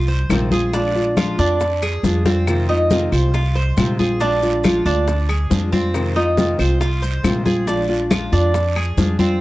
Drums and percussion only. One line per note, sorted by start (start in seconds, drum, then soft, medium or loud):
0.08 high conga soft
0.29 high bongo soft
0.29 low bongo medium
0.29 high conga medium
0.29 short guiro medium
0.29 claves medium
0.29 maracas medium
0.51 high bongo soft
0.51 high conga medium
0.51 short guiro medium
0.51 maracas soft
0.73 high bongo medium
0.73 high conga soft
0.73 long guiro medium
0.73 maracas medium
0.95 high bongo soft
0.95 high conga soft
1.17 high bongo medium
1.17 high conga medium
1.17 short guiro medium
1.17 claves medium
1.17 maracas medium
1.39 high bongo soft
1.39 high conga soft
1.39 short guiro medium
1.39 maracas soft
1.60 high bongo medium
1.60 high conga soft
1.60 long guiro medium
1.60 maracas medium
1.82 high conga soft
1.82 claves medium
1.82 maracas medium
2.04 high bongo soft
2.04 low bongo medium
2.04 high conga medium
2.04 short guiro medium
2.04 maracas medium
2.25 high bongo medium
2.25 high conga medium
2.25 short guiro medium
2.25 maracas soft
2.47 high bongo medium
2.47 high conga soft
2.47 long guiro medium
2.47 claves medium
2.47 maracas medium
2.69 high bongo soft
2.69 high conga soft
2.90 high bongo medium
2.90 high conga medium
2.90 short guiro medium
2.90 maracas medium
3.12 high bongo soft
3.12 short guiro medium
3.12 claves medium
3.12 maracas soft
3.34 high bongo medium
3.34 high conga soft
3.34 long guiro medium
3.34 maracas medium
3.56 high conga soft
3.77 high bongo soft
3.77 low bongo medium
3.77 high conga medium
3.77 short guiro medium
3.77 claves medium
3.77 maracas medium
3.99 high bongo soft
3.99 high conga medium
3.99 short guiro medium
3.99 maracas soft
4.20 high bongo medium
4.20 high conga soft
4.20 long guiro medium
4.20 maracas medium
4.42 high bongo soft
4.42 high conga soft
4.42 maracas medium
4.64 high bongo medium
4.64 high conga medium
4.64 short guiro medium
4.64 claves medium
4.64 maracas medium
4.86 high bongo soft
4.86 high conga soft
4.86 short guiro medium
4.86 maracas soft
5.08 high bongo medium
5.08 high conga soft
5.08 long guiro medium
5.08 maracas medium
5.29 high conga soft
5.29 claves medium
5.29 maracas medium
5.51 high bongo soft
5.51 low bongo medium
5.51 high conga medium
5.51 short guiro medium
5.51 maracas medium
5.72 high bongo soft
5.72 high conga medium
5.72 short guiro medium
5.72 maracas soft
5.94 high bongo medium
5.94 high conga soft
5.94 long guiro medium
5.94 claves medium
5.94 maracas medium
6.16 high bongo soft
6.16 high conga soft
6.37 high bongo medium
6.37 high conga medium
6.37 short guiro medium
6.37 maracas medium
6.59 high bongo soft
6.59 short guiro medium
6.59 claves medium
6.59 maracas soft
6.81 high bongo medium
6.81 high conga soft
6.81 long guiro medium
6.81 maracas medium
7.03 high conga soft
7.03 maracas medium
7.24 high bongo soft
7.24 low bongo medium
7.24 high conga medium
7.24 short guiro medium
7.24 claves medium
7.24 maracas medium
7.46 high bongo soft
7.46 high conga medium
7.46 short guiro medium
7.46 maracas soft
7.68 high bongo medium
7.68 high conga soft
7.68 long guiro medium
7.68 maracas medium
7.89 high bongo soft
7.89 high conga soft
8.11 high bongo medium
8.11 high conga loud
8.11 short guiro medium
8.11 claves medium
8.11 maracas medium
8.33 high bongo soft
8.33 high conga soft
8.33 short guiro medium
8.33 maracas soft
8.54 high bongo medium
8.54 high conga soft
8.54 long guiro medium
8.54 maracas medium
8.76 high conga soft
8.76 claves medium
8.97 high bongo soft
8.97 low bongo medium
8.97 high conga medium
8.97 short guiro medium
8.97 maracas medium
9.19 high bongo soft
9.19 high conga medium
9.19 short guiro medium
9.19 maracas soft